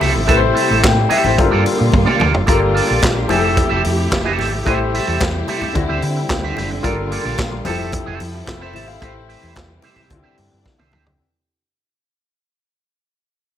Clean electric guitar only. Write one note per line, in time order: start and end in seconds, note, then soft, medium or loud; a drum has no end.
0.00 0.17 C4 medium
0.00 0.14 G4 medium
0.00 0.13 A4 loud
0.00 0.13 E5 medium
0.14 muted clean electric guitar stroke soft
0.27 0.44 C4 medium
0.27 0.41 G4 medium
0.27 0.40 A4 loud
0.27 0.40 E5 medium
0.41 muted clean electric guitar stroke medium
0.54 0.68 C4 medium
0.54 0.68 G4 medium
0.54 0.67 A4 medium
0.54 0.67 E5 medium
0.68 0.81 C4 medium
0.68 0.82 G4 medium
0.68 0.81 A4 medium
0.68 0.82 E5 medium
0.96 muted clean electric guitar stroke soft
1.09 1.24 C4 medium
1.09 1.24 G4 medium
1.09 1.23 A4 medium
1.09 1.22 E5 medium
1.24 1.37 C4 medium
1.24 1.37 G4 medium
1.24 1.37 A4 medium
1.24 1.37 E5 medium
1.37 muted clean electric guitar stroke soft
1.51 1.64 A#3 medium
1.51 1.64 F4 medium
1.51 1.64 A4 medium
1.51 1.64 D5 medium
1.65 muted clean electric guitar stroke soft
1.78 muted clean electric guitar stroke soft
1.91 muted clean electric guitar stroke soft
2.05 2.17 A#3 medium
2.05 2.18 F4 medium
2.05 2.18 A4 medium
2.05 2.18 D5 medium
2.19 2.32 A#3 medium
2.19 2.32 F4 medium
2.19 2.32 A4 medium
2.19 2.32 D5 medium
2.33 muted clean electric guitar stroke medium
2.46 2.63 A#3 medium
2.46 2.60 F4 medium
2.46 2.60 A4 medium
2.46 2.59 D5 medium
2.60 muted clean electric guitar stroke soft
2.74 2.87 A#3 medium
2.74 2.87 F4 medium
2.74 2.87 A4 medium
2.74 2.87 D5 medium
2.88 3.02 A#3 medium
2.88 3.01 F4 medium
2.88 3.01 A4 medium
2.88 3.01 D5 medium
3.15 muted clean electric guitar stroke soft
3.29 3.44 C4 medium
3.29 3.44 G4 loud
3.29 3.43 A4 medium
3.29 3.43 E5 medium
3.44 3.56 C4 medium
3.44 3.56 G4 medium
3.44 3.56 A4 medium
3.44 3.56 E5 medium
3.57 muted clean electric guitar stroke soft
3.69 3.82 C4 medium
3.69 3.83 G4 medium
3.69 3.83 A4 medium
3.69 3.83 E5 loud
3.83 muted clean electric guitar stroke soft
3.98 muted clean electric guitar stroke soft
4.12 muted clean electric guitar stroke soft
4.24 4.37 C4 medium
4.24 4.38 G4 medium
4.24 4.38 A4 medium
4.24 4.38 E5 medium
4.38 4.51 C4 medium
4.38 4.52 G4 medium
4.38 4.52 A4 medium
4.38 4.51 E5 medium
4.52 muted clean electric guitar stroke soft
4.65 4.86 C4 medium
4.65 4.80 G4 medium
4.65 4.79 A4 medium
4.65 4.79 E5 medium
4.80 muted clean electric guitar stroke soft
4.94 5.06 C4 medium
4.94 5.06 G4 medium
4.94 5.07 A4 medium
4.94 5.06 E5 medium
5.07 5.20 C4 medium
5.07 5.20 G4 medium
5.07 5.20 A4 medium
5.07 5.20 E5 medium
5.21 muted clean electric guitar stroke medium
5.35 muted clean electric guitar stroke soft
5.47 5.61 C4 medium
5.47 5.61 G4 medium
5.47 5.61 A4 loud
5.47 5.60 E5 medium
5.61 5.75 C4 soft
5.61 5.74 G4 soft
5.61 5.74 A4 medium
5.61 5.74 E5 medium
5.75 muted clean electric guitar stroke soft
5.89 6.02 D4 medium
5.89 6.02 G4 medium
5.89 6.02 C5 medium
5.89 6.02 E5 loud
6.03 muted clean electric guitar stroke soft
6.17 muted clean electric guitar stroke soft
6.31 muted clean electric guitar stroke soft
6.43 6.56 D4 medium
6.43 6.56 G4 medium
6.43 6.57 C5 medium
6.43 6.57 E5 medium
6.57 6.69 D4 medium
6.57 6.70 G4 medium
6.57 6.70 C5 medium
6.57 6.70 E5 medium
6.71 muted clean electric guitar stroke soft
6.83 6.99 A#3 medium
6.83 6.97 F4 medium
6.83 6.96 A4 medium
6.83 6.95 D5 medium
6.97 muted clean electric guitar stroke medium
7.11 7.24 A#3 medium
7.11 7.24 F4 medium
7.11 7.24 A4 medium
7.11 7.24 D5 medium
7.25 7.37 A#3 medium
7.25 7.38 F4 medium
7.25 7.38 A4 medium
7.25 7.38 D5 medium
7.38 muted clean electric guitar stroke soft
7.52 muted clean electric guitar stroke medium
7.65 7.79 C4 medium
7.65 7.78 G4 medium
7.65 7.78 A4 medium
7.65 7.77 E5 medium
7.79 7.92 C4 medium
7.79 7.92 G4 medium
7.79 7.92 A4 medium
7.79 7.92 E5 medium
7.93 muted clean electric guitar stroke soft
8.06 8.19 C4 medium
8.06 8.20 G4 medium
8.06 8.20 A4 medium
8.06 8.20 E5 medium
8.21 muted clean electric guitar stroke soft
8.34 muted clean electric guitar stroke soft
8.47 muted clean electric guitar stroke soft
8.61 8.73 C4 medium
8.61 8.74 G4 medium
8.61 8.74 A4 medium
8.61 8.74 E5 medium
8.75 8.87 C4 medium
8.75 8.87 G4 medium
8.75 8.87 A4 medium
8.75 8.86 E5 medium
8.87 muted clean electric guitar stroke medium
9.01 9.17 E4 medium
9.01 9.14 G4 medium
9.01 9.14 C5 medium
9.01 9.13 E5 loud
9.14 muted clean electric guitar stroke medium
9.28 9.41 E4 medium
9.28 9.41 G4 medium
9.28 9.41 C5 medium
9.28 9.40 E5 medium
9.42 9.54 E4 medium
9.42 9.54 G4 medium
9.42 9.54 C5 medium
9.42 9.55 E5 medium
9.55 muted clean electric guitar stroke soft
9.68 muted clean electric guitar stroke soft
9.82 9.96 E4 medium
9.82 9.95 G4 medium
9.82 9.95 C5 medium
9.82 9.95 E5 medium
9.96 10.09 E4 soft
9.96 10.09 G4 medium
9.96 10.09 C5 medium
9.96 10.09 E5 medium
10.10 muted clean electric guitar stroke soft
10.23 10.36 D4 medium
10.23 10.37 G4 medium
10.23 10.36 C5 medium
10.23 10.37 E5 medium
10.37 muted clean electric guitar stroke soft
10.51 muted clean electric guitar stroke soft
10.64 muted clean electric guitar stroke soft
10.78 10.91 D4 medium
10.78 10.91 G4 medium
10.78 10.92 C5 medium
10.78 10.92 E5 medium
10.92 11.05 D4 medium
10.92 11.05 G4 medium
10.92 11.05 C5 medium
10.92 11.05 E5 medium